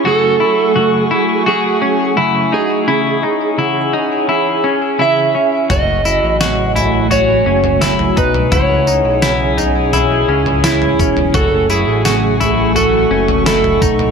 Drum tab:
TB |----------------|----------------|x-x-x-x-x---x-x-|x-x-x-x-x---x-x-|
SD |----------------|----------------|----o-------o---|----o-------o---|
FT |----------------|----------------|o-----o-o--o-o-o|o-----o-o--o-o-o|
BD |----------------|----------------|o-------------o-|o-------------o-|

TB |x-x-x-x-x---x-x-|
SD |----o-------o---|
FT |o-----o-o--o-o-o|
BD |o-------------o-|